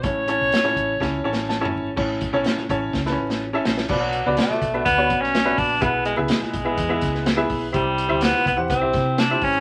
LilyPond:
<<
  \new Staff \with { instrumentName = "Grand piano" } { \time 4/4 \key a \major \tempo 4 = 125 <cis' e' a' cis''>8 <cis' e' a' cis''>8 r16 <cis' e' a' cis''>8 r16 <cis' e' a' cis''>8 <cis' e' a' cis''>8 r16 <cis' e' a' cis''>8 r16 | <cis' e' a' cis''>8 r16 <cis' e' a' cis''>8 r16 <cis' e' a' cis''>8 r16 <c' cis' e' a' b'>8. r16 <cis' e' a' e''>8 r16 | <b d' fis' b' d''>8 r16 <b d' fis' b' d''>8. r16 <b d' fis' b' e''>8 <b d' fis' b' cis''>8. r16 <b d' fis' b' e''>8 r16 | <b e' gis' b' e''>8 r16 <b e' gis' b' e''>8. r16 <b e' gis' b' e''>8 <b e' gis' b' e''>8. r16 <b e' gis' b' e''>8 r16 |
<c' e' g' c'' e''>8 r16 <c' e' g' c'' e''>8. r16 <c' e' g' c'' fis''>8 <c' e' g' c'' e''>8. r16 <c' e' g' c'' e''>8 r16 | }
  \new Staff \with { instrumentName = "Grand piano" } { \clef bass \time 4/4 \key a \major a,4. r4. a''4 | a,4. r2 r8 | b,4. r2 r8 | b,4. r2 r8 |
c4. r2 r8 | }
  \new Staff \with { instrumentName = "Alto saxophone" } { \time 4/4 \key a \major cis''2. r4 | r1 | fis4 a4 b8. cis'8. d'8 | b8 gis8 gis2~ gis8 r8 |
g4 b8 b8 c'4 d'8 cis'8 | }
  \new Staff \with { instrumentName = "Fingered electric bass" } { \clef bass \time 4/4 \key a \major a,,8. b,,16 r8 a,,8 cis,8 a,,4 gis,,8 | a,,8. b,,16 r8 a,,8 cis,8 a,,4 ais,,8 | b,,8. cis,16 r8 b,,8 d,8 b,,4 ais,,8 | b,,8. cis,16 r8 b,,8 e,8 cis,4 b,,8 |
c,8. d,8 r16 c,16 e,16 c,8 c4 gis,,8 | }
  \new DrumStaff \with { instrumentName = "Drums" } \drummode { \time 4/4 <hh bd>8 hh8 <hh sn>16 sn16 <hh bd>8 \tuplet 3/2 { <bd sn>8 r8 sn8 sn8 tomfh8 r8 } | <cymc bd>8 <hh bd>8 <hh sn>16 sn16 <hh bd>8 <bd sn>16 sn8 sn16 r8 sn16 sn16 | <cymc bd>8 hh8 <hh sn>16 sn16 <hh bd>8 <hh bd>8 <hh bd>16 sn16 <hh sn>8 <hho bd>8 | <hh bd>8 hh8 <hh sn>16 sn16 <hh bd>8 <hh bd>8 <hh bd sn>16 sn16 <hh sn>8 <hho bd>8 |
<hh bd>8 hh8 <hh sn>16 sn16 <hh bd>8 <hh bd>8 <hh bd sn>8 <hh sn>8 <hho bd>8 | }
>>